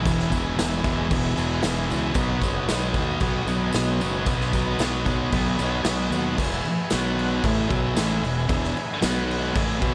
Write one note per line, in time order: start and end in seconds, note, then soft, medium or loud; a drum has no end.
0.00 1.21 B3 medium
0.00 2.11 G#4 medium
0.00 2.12 B4 medium
0.00 2.12 E5 medium
0.04 0.54 E1 loud
0.04 0.29 E2 loud
0.04 0.30 B2 medium
0.04 0.31 E3 loud
0.04 kick loud
0.04 tambourine medium
0.04 crash medium
0.20 snare soft
0.30 0.55 E2 medium
0.30 0.56 B2 medium
0.30 0.56 E3 medium
0.30 kick medium
0.30 tambourine medium
0.30 crash medium
0.56 0.83 E1 loud
0.56 0.82 E2 medium
0.56 0.83 B2 loud
0.56 0.83 E3 loud
0.56 snare loud
0.56 tambourine loud
0.56 crash medium
0.83 1.09 E1 medium
0.83 1.08 E2 medium
0.83 1.09 B2 loud
0.83 1.10 E3 loud
0.83 kick loud
0.83 tambourine soft
0.83 crash medium
1.09 1.35 E1 loud
1.09 1.35 E2 loud
1.09 1.36 B2 loud
1.09 1.37 E3 loud
1.09 kick loud
1.09 tambourine soft
1.09 crash loud
1.36 1.61 E1 loud
1.36 1.61 E2 medium
1.36 1.62 B2 loud
1.36 1.64 E3 loud
1.36 tambourine medium
1.36 crash medium
1.62 1.88 E1 medium
1.62 1.88 E2 medium
1.62 1.89 B2 medium
1.62 1.89 E3 loud
1.62 snare loud
1.62 tambourine medium
1.62 crash medium
1.89 2.15 C#2 medium
1.89 2.14 E2 medium
1.89 2.13 B2 medium
1.89 2.14 E3 medium
1.89 tambourine medium
1.89 crash medium
2.14 2.40 B1 loud
2.14 2.40 B2 loud
2.14 2.42 F#3 loud
2.14 2.43 B3 loud
2.14 6.34 F#4 medium
2.14 6.34 B4 medium
2.14 kick loud
2.14 tambourine medium
2.14 crash medium
2.20 6.35 D#5 medium
2.41 2.66 F#1 loud
2.41 2.68 B2 medium
2.41 2.69 F#3 medium
2.41 2.70 B3 medium
2.41 kick medium
2.41 tambourine medium
2.41 crash medium
2.69 2.94 B1 loud
2.69 2.95 B2 medium
2.69 2.96 F#3 medium
2.69 2.97 B3 medium
2.69 snare loud
2.69 tambourine medium
2.69 crash medium
2.94 3.19 D#2 medium
2.94 3.20 B2 medium
2.94 3.21 F#3 loud
2.94 3.22 B3 loud
2.94 kick medium
2.94 tambourine soft
2.94 crash medium
3.20 3.45 B1 loud
3.20 3.46 B2 loud
3.20 3.48 F#3 loud
3.20 3.49 B3 loud
3.20 kick loud
3.20 tambourine soft
3.20 crash medium
3.46 3.71 B1 medium
3.46 3.72 B2 loud
3.46 3.74 F#3 loud
3.46 3.75 B3 loud
3.46 tambourine medium
3.46 crash medium
3.72 3.98 B1 loud
3.72 3.99 B2 medium
3.72 4.01 F#3 medium
3.72 4.02 B3 medium
3.72 snare loud
3.72 tambourine loud
3.72 crash medium
3.99 4.24 F#1 medium
3.99 4.25 B2 medium
3.99 4.25 F#3 medium
3.99 4.27 B3 medium
3.99 tambourine medium
3.99 crash medium
4.26 4.75 B1 loud
4.26 4.52 B2 loud
4.26 4.53 F#3 loud
4.26 4.54 B3 loud
4.26 kick loud
4.26 tambourine medium
4.26 crash medium
4.41 snare soft
4.53 4.79 B2 medium
4.53 4.80 F#3 medium
4.53 4.80 B3 medium
4.53 kick medium
4.53 tambourine medium
4.53 crash medium
4.79 5.03 B1 medium
4.79 5.04 B2 medium
4.79 5.05 F#3 medium
4.79 5.06 B3 loud
4.79 snare loud
4.79 tambourine loud
4.79 crash medium
5.06 5.30 B1 medium
5.06 5.30 B2 medium
5.06 5.31 F#3 loud
5.06 5.32 B3 loud
5.06 kick medium
5.06 tambourine soft
5.06 crash medium
5.31 5.57 B1 medium
5.31 5.58 B2 loud
5.31 5.59 F#3 loud
5.31 5.60 B3 loud
5.31 kick loud
5.31 tambourine soft
5.31 crash loud
5.57 5.83 B1 loud
5.57 5.82 B2 medium
5.57 5.84 F#3 loud
5.57 5.85 B3 loud
5.57 5.82 B5 medium
5.57 tambourine medium
5.57 crash medium
5.84 6.09 B1 medium
5.84 6.09 B2 medium
5.84 6.11 F#3 medium
5.84 6.11 B3 loud
5.84 6.11 G#5 medium
5.84 snare loud
5.84 tambourine loud
5.84 crash loud
6.10 6.35 D#2 medium
6.10 6.36 B2 medium
6.10 6.36 F#3 medium
6.10 6.37 B3 medium
6.10 6.36 F#5 medium
6.10 tambourine medium
6.10 crash medium
6.37 6.63 E1 loud
6.37 6.63 E2 medium
6.37 6.63 B2 loud
6.37 6.64 E3 loud
6.37 6.92 G#4 medium
6.37 6.91 B4 medium
6.37 kick loud
6.37 crash loud
6.37 crash medium
6.43 6.93 E5 medium
6.65 muted fingered electric bass stroke soft
6.65 muted distorted electric guitar stroke medium
6.65 crash medium
6.90 7.41 B1 loud
6.90 7.43 B2 medium
6.90 7.43 F#3 loud
6.90 7.44 B3 loud
6.90 7.44 F#4 medium
6.90 7.42 B4 medium
6.90 7.45 F#5 medium
6.90 snare loud
6.90 tambourine loud
6.90 crash medium
7.19 crash medium
7.41 7.68 A1 loud
7.41 7.69 A2 loud
7.41 7.69 E3 loud
7.41 7.70 A3 loud
7.41 8.98 G#4 medium
7.41 8.99 B4 medium
7.41 8.99 E5 medium
7.41 kick loud
7.41 crash medium
7.69 7.95 B1 loud
7.69 7.95 B2 loud
7.69 7.95 F#3 loud
7.69 7.96 B3 loud
7.69 kick loud
7.69 crash medium
7.96 8.21 A1 loud
7.96 8.22 A2 medium
7.96 8.23 E3 loud
7.96 8.23 A3 loud
7.96 snare loud
7.96 tambourine loud
7.96 crash medium
8.22 8.47 E1 medium
8.22 8.44 E2 medium
8.22 8.44 B2 medium
8.22 crash medium
8.48 8.74 E1 loud
8.48 8.74 E2 medium
8.48 8.75 B2 loud
8.48 8.75 E3 loud
8.48 kick loud
8.48 crash medium
8.64 snare soft
8.75 muted distorted electric guitar stroke medium
8.75 muted fingered electric bass stroke soft
8.75 crash medium
9.01 9.52 B1 loud
9.01 9.54 B2 loud
9.01 9.54 F#3 loud
9.01 9.55 B3 loud
9.01 9.54 F#4 medium
9.01 9.55 B4 medium
9.01 9.56 F#5 medium
9.01 snare loud
9.01 tambourine loud
9.01 crash medium
9.31 crash medium
9.55 9.80 A1 loud
9.55 9.80 A2 loud
9.55 9.81 E3 loud
9.55 9.81 A3 loud
9.55 9.94 G#4 medium
9.55 9.94 B4 medium
9.55 9.94 E5 medium
9.55 kick loud
9.55 crash loud
9.80 9.94 B1 loud
9.80 9.94 B2 loud
9.80 9.94 F#3 loud
9.80 9.94 B3 loud
9.80 kick loud
9.80 crash medium